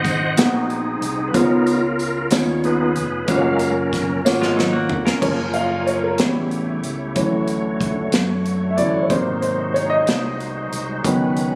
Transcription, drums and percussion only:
0.05 kick, closed hi-hat, tambourine
0.37 snare, closed hi-hat, tambourine
0.70 closed hi-hat
1.02 closed hi-hat
1.34 kick, closed hi-hat, tambourine
1.67 closed hi-hat, tambourine
1.99 closed hi-hat, tambourine
2.31 snare, closed hi-hat, tambourine
2.64 closed hi-hat
2.96 closed hi-hat
3.28 kick, closed hi-hat, tambourine
3.59 closed hi-hat, tambourine
3.93 kick, snare, closed hi-hat, tambourine
4.26 snare, tambourine
4.42 snare
4.59 snare
4.89 floor tom
5.07 snare
5.22 kick, crash
5.54 closed hi-hat
5.87 closed hi-hat
6.18 snare, closed hi-hat
6.51 closed hi-hat
6.84 closed hi-hat
7.16 kick, closed hi-hat
7.48 closed hi-hat
7.81 kick, closed hi-hat
8.12 snare, closed hi-hat
8.46 closed hi-hat
8.78 closed hi-hat
9.10 kick, closed hi-hat
9.42 closed hi-hat
9.76 closed hi-hat
10.07 snare, closed hi-hat
10.40 closed hi-hat
10.73 closed hi-hat
11.05 kick, closed hi-hat
11.37 closed hi-hat

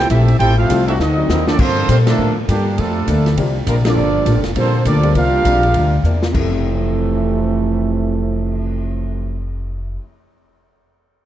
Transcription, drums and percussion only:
0.10 kick, hi-hat pedal, ride
0.28 ride
0.40 kick, ride
0.70 kick, hi-hat pedal, ride
0.88 ride
1.00 snare
1.29 snare, hi-hat pedal
1.47 snare
1.59 kick, crash
1.89 kick, hi-hat pedal, ride
2.07 snare, ride
2.49 kick, hi-hat pedal, ride
2.78 kick, ride
3.08 kick, hi-hat pedal, ride
3.26 snare, ride
3.37 kick, ride
3.67 kick, hi-hat pedal, ride
3.85 snare, ride
4.26 kick, hi-hat pedal, ride
4.44 snare, ride
4.56 kick, ride
4.85 kick, hi-hat pedal, ride
5.03 ride
5.15 kick, ride
5.45 kick, hi-hat pedal, ride
5.63 ride
5.74 kick, ride
6.04 hi-hat pedal
6.23 snare
6.34 kick, crash
6.53 cymbal swell

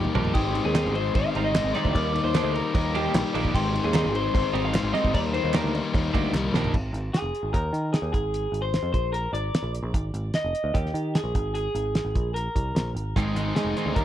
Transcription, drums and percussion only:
0.05 mid tom
0.15 floor tom
0.25 floor tom
0.35 kick, crash
0.55 crash
0.75 snare, clap, crash
0.85 snare
0.95 crash
1.15 kick, crash
1.35 crash
1.55 snare, clap, crash
1.75 snare, crash
1.85 kick
1.95 kick, crash
2.15 crash
2.35 snare, clap, crash
2.55 crash
2.75 kick, crash
2.95 crash
3.15 snare, clap, crash
3.35 crash
3.45 kick
3.55 kick, crash
3.75 crash
3.94 snare, clap, crash
4.06 snare
4.15 crash
4.35 kick, crash
4.55 crash
4.74 snare, clap, crash
4.95 snare, crash
5.05 kick
5.14 kick, crash
5.34 crash
5.53 snare, clap, crash
5.65 snare
5.75 crash
5.94 kick, crash
6.14 kick, crash
6.34 snare, clap
6.54 snare
6.64 floor tom
6.74 kick, crash
6.94 closed hi-hat
7.14 snare, closed hi-hat
7.35 closed hi-hat
7.54 kick, closed hi-hat
7.74 closed hi-hat
7.94 snare, closed hi-hat
8.14 kick, closed hi-hat
8.34 closed hi-hat
8.54 closed hi-hat
8.74 snare, closed hi-hat
8.94 kick, closed hi-hat
9.14 closed hi-hat
9.35 closed hi-hat
9.55 snare, closed hi-hat
9.75 closed hi-hat
9.94 kick, closed hi-hat
10.14 closed hi-hat
10.34 snare, closed hi-hat
10.55 closed hi-hat
10.75 kick, closed hi-hat
10.86 snare
10.95 closed hi-hat
11.15 snare, closed hi-hat
11.35 kick, closed hi-hat
11.55 closed hi-hat
11.75 closed hi-hat
11.95 snare, closed hi-hat
12.15 kick, closed hi-hat
12.36 closed hi-hat
12.56 kick, closed hi-hat
12.76 snare, closed hi-hat
12.97 closed hi-hat
13.16 kick, closed hi-hat
13.36 closed hi-hat
13.56 snare, closed hi-hat
13.77 closed hi-hat
13.96 kick, closed hi-hat

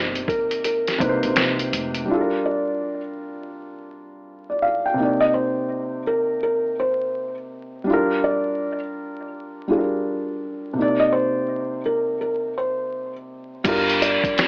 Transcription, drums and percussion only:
0.15 closed hi-hat
0.28 kick, closed hi-hat
0.51 closed hi-hat
0.64 closed hi-hat
0.87 snare, closed hi-hat
1.00 kick, closed hi-hat
1.23 closed hi-hat
1.36 snare, closed hi-hat
1.59 closed hi-hat
1.73 closed hi-hat
1.95 closed hi-hat
13.65 kick, closed hi-hat, crash
13.90 closed hi-hat
14.02 closed hi-hat
14.24 kick, closed hi-hat
14.38 snare, closed hi-hat

